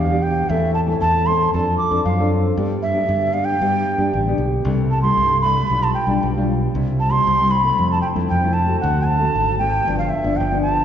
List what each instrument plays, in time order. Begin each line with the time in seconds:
Already playing: fingered electric bass E2, nylon-string guitar B2
0.00 bansuri F5
0.11 nylon-string guitar B3 D4 G4
0.23 bansuri G5
0.49 fingered electric bass E2, nylon-string guitar A2 E3 A3 C4 E4 A4, bansuri E5
0.74 bansuri A5
0.87 nylon-string guitar E3 A3 C4 E4 A4
1.01 fingered electric bass E2, nylon-string guitar A2, bansuri A5
1.26 nylon-string guitar E3 A3 C4 E4 A4, bansuri C6
1.54 fingered electric bass F2, nylon-string guitar F3 C4 D4 A4, bansuri A5
1.78 bansuri D6
1.90 fingered electric bass F2, nylon-string guitar C4 D4 A4
2.05 fingered electric bass F#2, nylon-string guitar F3, bansuri F5
2.19 nylon-string guitar C4 D4 A4
2.57 fingered electric bass G2, nylon-string guitar G3 B3 D4 G4
2.83 bansuri E5
2.93 nylon-string guitar B3 D4 G4
3.09 fingered electric bass G2, nylon-string guitar D3
3.33 nylon-string guitar B3 D4 G4, bansuri F5
3.45 bansuri G5
3.60 fingered electric bass G2, nylon-string guitar G3 B3 D4 G4
3.98 fingered electric bass G2, nylon-string guitar B3 D4 G4
4.13 fingered electric bass A1, nylon-string guitar D3
4.27 nylon-string guitar B3 D4 G4
4.38 fingered electric bass B1
4.65 fingered electric bass C2, nylon-string guitar C3 G3 A3 E4
4.91 bansuri A5
5.02 nylon-string guitar G3 A3 E4, bansuri C6
5.17 fingered electric bass C2, nylon-string guitar G2
5.42 nylon-string guitar G3 A3 E4, bansuri B5
5.70 fingered electric bass B1, nylon-string guitar B2 G3 D4 F4
5.83 bansuri A5
5.94 bansuri G5
6.07 fingered electric bass B1, nylon-string guitar G3 D4 F4
6.23 fingered electric bass B1, nylon-string guitar B2
6.36 nylon-string guitar G3 D4 F4
6.74 fingered electric bass C2, nylon-string guitar C3 G3 C4 E4
7.00 bansuri A5
7.11 nylon-string guitar G3 C4 E4, bansuri C6
7.27 fingered electric bass C2, nylon-string guitar G3
7.40 nylon-string guitar G3 C4 E4
7.51 bansuri B5
7.63 nylon-string guitar A3 C4 E4
7.78 fingered electric bass F2, nylon-string guitar F3
7.92 bansuri A5
8.02 bansuri G5
8.14 fingered electric bass F2, nylon-string guitar A3 C4 E4
8.29 fingered electric bass F2, nylon-string guitar C3, bansuri G5
8.44 nylon-string guitar A3 C4 E4
8.53 bansuri A5
8.66 nylon-string guitar A3 C4 F#4
8.81 fingered electric bass D2, nylon-string guitar D3, bansuri F#5
9.06 bansuri A5
9.19 nylon-string guitar A3 C4 F#4
9.35 fingered electric bass G#1
9.59 nylon-string guitar A3 C4 F#4, bansuri G5
9.87 fingered electric bass G1, nylon-string guitar G2 F3 B3 D4
9.99 bansuri F5
10.09 bansuri E5
10.23 fingered electric bass G1, nylon-string guitar F3 B3 D4
10.37 fingered electric bass G1, nylon-string guitar D3, bansuri G5
10.51 nylon-string guitar F3 B3 D4
10.62 bansuri A5